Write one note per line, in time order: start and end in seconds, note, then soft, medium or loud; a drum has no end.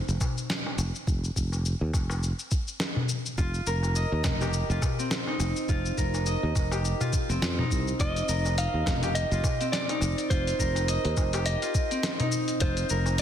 0.00 1.06 C4 medium
0.00 1.06 D#4 medium
0.00 0.30 F4 medium
0.09 0.17 F1 loud
0.09 shaker soft
0.21 kick medium
0.21 darbuka ka soft
0.21 darbuka tek medium
0.21 darbuka dum medium
0.21 shaker medium
0.38 shaker soft
0.50 snare medium
0.50 shaker soft
0.67 darbuka ka medium
0.78 0.90 F1 loud
0.78 darbuka ka soft
0.78 shaker medium
0.95 shaker soft
1.07 1.29 F1 medium
1.07 kick loud
1.07 shaker soft
1.24 shaker soft
1.36 1.73 F1 medium
1.36 kick medium
1.36 shaker medium
1.52 darbuka ka soft
1.52 shaker soft
1.66 shaker soft
1.81 1.90 D#2 medium
1.94 2.31 F1 medium
1.94 kick loud
1.94 darbuka ka medium
1.94 shaker medium
2.10 darbuka tek medium
2.10 shaker soft
2.23 shaker soft
2.39 shaker soft
2.52 kick loud
2.52 shaker medium
2.68 shaker soft
2.80 snare medium
2.80 shaker soft
2.96 darbuka dum medium
3.09 shaker medium
3.26 shaker soft
3.38 3.59 F1 medium
3.38 4.70 F4 medium
3.38 kick loud
3.38 shaker soft
3.54 shaker soft
3.67 4.04 F1 medium
3.67 5.79 A#4 medium
3.67 shaker medium
3.83 darbuka ka soft
3.83 shaker soft
3.96 5.74 D#5 medium
3.96 shaker soft
4.12 4.21 D#2 medium
4.24 4.62 F1 medium
4.24 kick loud
4.24 snare medium
4.24 darbuka ka medium
4.24 darbuka dum medium
4.24 shaker medium
4.41 6.72 G4 medium
4.41 darbuka tek medium
4.41 shaker soft
4.53 shaker soft
4.70 4.78 F1 loud
4.70 5.69 F4 medium
4.70 shaker soft
4.82 kick loud
4.82 darbuka ka soft
4.82 darbuka tek medium
4.82 darbuka dum medium
4.82 shaker medium
4.99 7.29 C4 medium
4.99 shaker soft
5.11 snare medium
5.11 shaker soft
5.27 7.58 D#4 medium
5.27 darbuka ka soft
5.40 5.51 F1 loud
5.40 darbuka ka medium
5.40 shaker medium
5.57 shaker soft
5.69 5.90 F1 loud
5.69 7.00 F4 medium
5.69 kick loud
5.69 shaker soft
5.86 shaker soft
5.98 6.35 F1 medium
5.98 8.10 A#4 medium
5.98 kick medium
5.98 shaker medium
6.14 darbuka ka soft
6.14 shaker soft
6.26 8.05 D#5 medium
6.26 shaker soft
6.43 6.52 D#2 medium
6.55 6.93 F1 medium
6.55 kick loud
6.55 darbuka ka medium
6.55 shaker medium
6.72 9.03 G4 medium
6.72 darbuka tek medium
6.72 shaker soft
6.85 shaker soft
7.01 8.00 F4 medium
7.01 darbuka dum medium
7.01 shaker soft
7.13 kick loud
7.13 shaker medium
7.29 7.38 F1 loud
7.29 9.60 C4 medium
7.29 shaker soft
7.42 7.63 F2 medium
7.42 snare medium
7.42 shaker soft
7.59 9.89 D#4 medium
7.59 darbuka dum medium
7.71 7.92 C2 medium
7.71 kick medium
7.71 shaker medium
7.88 shaker soft
8.00 8.21 F1 medium
8.00 9.32 F4 medium
8.00 8.54 D#5 loud
8.00 kick loud
8.00 closed hi-hat medium
8.00 shaker soft
8.16 closed hi-hat soft
8.16 shaker soft
8.28 8.66 F1 medium
8.28 10.41 A#4 medium
8.28 shaker medium
8.46 darbuka ka soft
8.46 shaker soft
8.58 10.36 D#5 medium
8.58 9.17 F5 loud
8.58 closed hi-hat medium
8.58 shaker soft
8.74 8.82 D#2 medium
8.86 9.23 F1 medium
8.86 kick loud
8.86 snare medium
8.86 darbuka ka medium
8.86 darbuka dum medium
8.86 shaker medium
9.03 11.33 G4 medium
9.03 closed hi-hat soft
9.03 darbuka tek medium
9.03 shaker soft
9.15 9.72 D#5 loud
9.15 closed hi-hat medium
9.15 shaker soft
9.32 9.40 F1 loud
9.32 10.31 F4 medium
9.32 shaker soft
9.44 kick loud
9.44 darbuka ka soft
9.44 darbuka tek medium
9.44 darbuka dum medium
9.44 shaker medium
9.61 11.91 C4 medium
9.61 closed hi-hat soft
9.61 shaker soft
9.72 10.32 D5 medium
9.72 snare medium
9.72 closed hi-hat medium
9.72 shaker soft
9.89 12.19 D#4 medium
9.89 closed hi-hat soft
9.89 darbuka ka medium
10.01 10.13 F1 medium
10.01 darbuka ka soft
10.01 shaker medium
10.18 closed hi-hat soft
10.18 shaker soft
10.30 10.52 F1 medium
10.30 11.62 F4 medium
10.30 11.49 C5 medium
10.30 kick loud
10.30 closed hi-hat medium
10.30 shaker soft
10.47 closed hi-hat soft
10.47 shaker soft
10.59 10.96 F1 medium
10.59 12.71 A#4 medium
10.59 kick medium
10.59 shaker medium
10.76 closed hi-hat soft
10.76 darbuka ka soft
10.76 shaker soft
10.88 12.67 D#5 medium
10.88 closed hi-hat medium
10.88 shaker soft
11.05 11.13 D#2 medium
11.05 closed hi-hat soft
11.17 11.54 F1 medium
11.17 kick loud
11.17 darbuka ka medium
11.17 shaker medium
11.33 13.22 G4 medium
11.33 closed hi-hat soft
11.33 darbuka tek medium
11.33 shaker soft
11.46 12.28 D#5 medium
11.46 closed hi-hat medium
11.46 shaker soft
11.62 12.60 F4 medium
11.62 closed hi-hat soft
11.62 shaker soft
11.75 kick medium
11.75 shaker medium
11.91 13.22 C4 medium
11.91 closed hi-hat soft
11.91 shaker soft
12.03 snare medium
12.03 closed hi-hat medium
12.03 shaker soft
12.20 13.22 D#4 medium
12.20 closed hi-hat soft
12.20 darbuka dum medium
12.32 shaker medium
12.48 closed hi-hat soft
12.48 shaker soft
12.60 12.82 F1 medium
12.60 13.22 F4 medium
12.60 13.15 C5 medium
12.60 kick loud
12.60 closed hi-hat medium
12.60 shaker soft
12.77 closed hi-hat soft
12.77 shaker soft
12.90 13.22 F1 medium
12.90 13.22 A#4 medium
12.90 shaker medium
13.06 darbuka ka medium
13.06 shaker soft
13.18 closed hi-hat medium
13.18 shaker soft